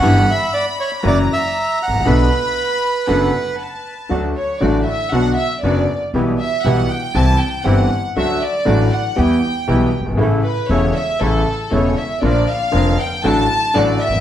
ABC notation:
X:1
M:4/4
L:1/16
Q:1/4=118
K:Bm
V:1 name="Violin section"
b8 ^a8 | b8 f4 a4 | [K:D] z2 c2 d2 e2 f2 e2 d3 z | z2 e2 f2 g2 a2 g2 f3 z |
e2 d4 f2 g6 z2 | z2 B2 c2 e2 A4 c2 e2 | d2 =f4 g2 a4 d2 e2 |]
V:2 name="Bandoneon"
f2 e2 d2 c2 d2 e4 f2 | B12 z4 | [K:D] z16 | z16 |
z16 | z16 | z16 |]
V:3 name="Bandoneon"
[B,EG]2 z6 [^A,EF]2 z6 | [B,DA]2 z6 [B,DA]2 z6 | [K:D] [A,DF]2 z2 [A,DF]2 z2 [B,DF]2 z2 [B,DF]2 z2 | [B,EG]2 z2 [B,EG]2 z2 [=CEG]2 z2 [CEG]2 z2 |
[A,DF]2 z2 [A,DF]2 z2 [B,EG]2 z2 [B,EG]2 z2 | [CEA]2 z2 [CEA]2 z2 [CEA]2 z2 [CEA]2 z2 | [D=F_B]2 z2 [DFB]2 z2 [D^FA]2 z2 [DFA]2 z2 |]
V:4 name="Grand piano" clef=bass
[G,,,G,,E,B,DG]2 z6 [F,,E,F,^A,CF]2 z4 z/2 ^G,,,/2 =A,,,/2 ^A,,,/2 | [B,,,B,,D,A,B,F]2 z6 [F,,,F,,D,A,B,F]2 z6 | [K:D] [D,,D,F,A,F]2 z2 [A,,,A,,D,F,A,F]2 z2 [B,,,B,,D,F,B,F]2 z2 [F,,,F,,D,F,B,F]2 z2 | [B,,,B,,E,G,B,G]2 z2 [B,,,B,,E,G,B,G]2 z2 [=C,,=C,E,G,=CG]2 z2 [G,,,G,,E,G,CG]2 z2 |
[D,,D,F,A,F]2 z2 [A,,,A,,D,F,A,F]2 z2 [E,,E,G,B,G]2 z2 [B,,,B,,E,G,B,G]2 z/2 F,,,/2 G,,,/2 ^G,,,/2 | [A,,,A,,C,E,A,E]2 z2 [E,,,E,,C,E,A,E]2 z2 [A,,,A,,C,E,A,E]2 z2 [E,,,E,,C,E,A,E]2 z2 | [_B,,,_B,,D,=F,_B,=F]2 z2 [=F,,,=F,,D,F,B,F]2 z2 [A,,,A,,D,^F,A,^F]2 z2 [A,,,A,,D,F,A,F]2 z/2 ^G,,,/2 A,,,/2 z/2 |]
V:5 name="Upright bass" clef=bass
G,,,3/2 z6 z/2 F,,,3/2 z4 z ^G,,,/2 A,,,/2 ^A,,,/2 | B,,,3/2 z6 z/2 F,,,3/2 z6 z/2 | [K:D] D,,3/2 z2 z/2 A,,,3/2 z2 z/2 B,,,3/2 z2 z/2 F,,,3/2 z2 z/2 | B,,,3/2 z2 z/2 B,,,3/2 z2 z/2 =C,,3/2 z2 z/2 G,,,3/2 z2 z/2 |
D,,3/2 z2 z/2 A,,,3/2 z2 z/2 E,,3/2 z2 z/2 B,,,3/2 z F,,,/2 G,,,/2 ^G,,,/2 | A,,,3/2 z2 z/2 E,,,3/2 z2 z/2 A,,,3/2 z2 z/2 E,,,3/2 z2 z/2 | _B,,,3/2 z2 z/2 =F,,,3/2 z2 z/2 A,,,3/2 z2 z/2 A,,,3/2 z ^G,,,/2 A,,,/2 z/2 |]